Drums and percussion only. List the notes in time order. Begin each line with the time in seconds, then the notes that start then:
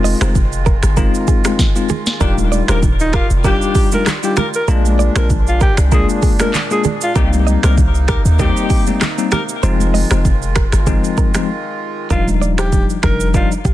0.05 open hi-hat, high conga, shaker
0.21 finger snap, cross-stick, high conga, shaker
0.35 kick, low conga, shaker
0.53 shaker
0.66 kick, shaker
0.83 finger snap, cross-stick, shaker
0.97 kick, low conga, shaker
1.15 shaker
1.28 kick, shaker
1.45 finger snap, cross-stick, high conga, shaker
1.59 kick, snare, low conga, shaker
1.76 shaker
1.89 high conga, low conga, shaker
2.06 snare, shaker
2.21 kick, shaker
2.38 high conga, shaker
2.52 high conga, shaker
2.68 finger snap, cross-stick, high conga, shaker
2.83 kick, low conga, shaker
3.00 shaker
3.13 finger snap, kick, cross-stick, shaker
3.30 shaker
3.44 kick, low conga, shaker
3.62 shaker
3.75 kick, open hi-hat, shaker
3.92 high conga, shaker
4.06 finger snap, cross-stick, clap, low conga, shaker
4.23 shaker
4.36 finger snap, cross-stick, high conga, low conga, shaker
4.54 shaker
4.68 shaker
4.85 high conga, shaker
4.99 high conga, shaker
5.16 finger snap, cross-stick, high conga, shaker
5.30 kick, low conga, shaker
5.47 shaker
5.61 kick, shaker
5.77 finger snap, cross-stick, shaker
5.92 kick, low conga, shaker
6.09 shaker
6.22 kick, open hi-hat, shaker
6.39 finger snap, cross-stick, high conga, shaker
6.54 clap, low conga, shaker
6.71 shaker
6.84 high conga, low conga, shaker
7.01 shaker
7.16 kick, shaker
7.33 high conga, shaker
7.47 high conga, shaker
7.63 finger snap, cross-stick, high conga, shaker
7.78 kick, low conga, shaker
7.95 shaker
8.08 finger snap, kick, cross-stick, shaker
8.25 shaker
8.39 kick, low conga, shaker
8.57 shaker
8.70 kick, open hi-hat, shaker
8.87 high conga, shaker
9.01 finger snap, cross-stick, clap, low conga, shaker
9.18 shaker
9.31 finger snap, cross-stick, high conga, low conga, shaker
9.49 shaker
9.63 shaker
9.80 high conga, shaker
9.94 open hi-hat, high conga, shaker
10.11 finger snap, cross-stick, high conga, shaker
10.25 kick, low conga, shaker
10.42 shaker
10.56 finger snap, kick, cross-stick, shaker
10.72 finger snap, cross-stick, shaker
10.87 kick, low conga, shaker
11.04 shaker
11.17 kick, shaker
11.34 finger snap, cross-stick, high conga, shaker
12.11 kick, shaker
12.27 high conga, shaker
12.42 high conga, shaker
12.58 finger snap, cross-stick, shaker
12.72 kick, low conga, shaker
12.90 shaker
13.03 finger snap, kick, cross-stick, shaker
13.20 shaker
13.34 kick, low conga, shaker
13.52 shaker
13.65 kick, shaker